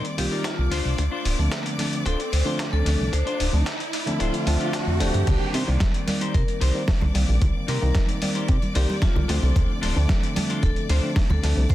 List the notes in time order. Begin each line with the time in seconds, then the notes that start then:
Already playing: D#3 G3 A#3 C4 D5 D6, riser
0.05 closed hi-hat
0.17 C2 D#3 G3 A#3 C4 F4 G4, muted clean electric guitar stroke, open hi-hat
0.31 D#4 A#4 D5
0.44 F4, kick, snare, closed hi-hat
0.59 C2
0.71 D2 D4 F4 C5, open hi-hat
0.85 C2
0.98 D2, kick, closed hi-hat
1.11 D4 F4 C5
1.25 D1, open hi-hat
1.38 D2 D3 F3 A3 C4 D4
1.52 kick, snare, closed hi-hat
1.65 muted clean electric guitar stroke, closed hi-hat
1.78 D3 F3 A3 C4 D4, open hi-hat
1.93 closed hi-hat
2.05 D1 D4 F4 A4 C5, kick, closed hi-hat
2.20 closed hi-hat
2.32 D2 C5, muted clean electric guitar stroke, open hi-hat
2.45 D3 F3 A3 C4 D4 F4 C5
2.59 kick, snare, closed hi-hat
2.73 D2 A4
2.85 D2 D3 F3 A3 C4 D4, muted clean electric guitar stroke, open hi-hat
3.00 C2
3.12 D2 C5, muted clean electric guitar stroke, kick, closed hi-hat
3.26 D4 F4 C5, closed hi-hat
3.40 D1, open hi-hat
3.52 D2 D3 F3 A3 C4 D4
3.66 kick, snare, closed hi-hat
3.80 muted clean electric guitar stroke, closed hi-hat
3.93 open hi-hat
4.06 D3 F3 A3 C4 D4, closed hi-hat
4.19 D1 D3 F3 A3 C4 D4 F4 C5, kick, closed hi-hat
4.34 closed hi-hat
4.46 D2 D3 F3 A3 C4 D4, muted clean electric guitar stroke, open hi-hat
4.60 D4 F4 G4, closed hi-hat
4.73 D3 F3 A3 C4 D4, kick, snare, closed hi-hat
4.87 F2
5.00 D1 D3 F3 A3 C4 D4 G4, muted clean electric guitar stroke, open hi-hat
5.14 G2 G4, closed hi-hat
5.27 C2 D#3 G3 A#3 C4 D4 D5 D6, kick, closed hi-hat, crash, low conga
5.53 C3 D#4 G4 A#4 C5, open hi-hat
5.67 C2 D#3 G3 A#3 C4 D5
5.80 muted clean electric guitar stroke, kick, snare, closed hi-hat
5.94 closed hi-hat
6.07 D#3 G3 A#3 C4 D5, open hi-hat, high conga
6.21 D#4 G4 A#4 C5, closed hi-hat
6.34 C3 A#4, kick, closed hi-hat
6.48 closed hi-hat
6.60 C2 D#4 G4 A#4 C5, open hi-hat
6.74 D#3 G3 A#3 C4 D5
6.88 kick, snare, open hi-hat
7.01 C2, muted clean electric guitar stroke, high conga, low conga
7.13 C2 D#3 G3 A#3 C4 D5, muted clean electric guitar stroke, open hi-hat
7.29 A#1
7.42 C2, kick, closed hi-hat, low conga
7.68 C3 D#4 G4 A#4 C5, open hi-hat
7.81 C2 D#3 G3 A#3 C4 D#4 A#4
7.95 kick, snare, closed hi-hat
8.09 closed hi-hat
8.21 D#3 G3 A#3 C4 D5, open hi-hat, high conga
8.35 D#4 G4 A#4 C5, closed hi-hat
8.48 C3, kick, closed hi-hat
8.62 closed hi-hat, high conga
8.75 C2 D#3 G3 A#3 C4 D#4 G4 A#4 C5 D5, open hi-hat
8.90 high conga
9.02 F4, kick, snare, closed hi-hat
9.15 C2, muted clean electric guitar stroke, high conga, low conga
9.28 D2 D3 F3 A3 C4 D4 F4 A4 C5, open hi-hat
9.43 C2
9.56 D2, kick, closed hi-hat, low conga
9.81 D1 D4 F4 A4 C5, open hi-hat
9.96 D2 D3 F3 A3 C4 D4
10.09 kick, snare, closed hi-hat
10.23 closed hi-hat
10.35 D3 F3 A3 C4 D4, open hi-hat, high conga
10.49 D4 F4 A4 C5, closed hi-hat
10.63 D1 A4, kick, closed hi-hat
10.76 closed hi-hat
10.89 D2 D4 F4 A4 C5, open hi-hat
11.03 D3 F3 A3 C4 D4
11.16 kick, snare, open hi-hat
11.30 D2 A4, muted clean electric guitar stroke, high conga, low conga
11.42 D2 D3 F3 A3 C4 D4, muted clean electric guitar stroke, open hi-hat
11.57 C2
11.69 D2 C5, kick, closed hi-hat, low conga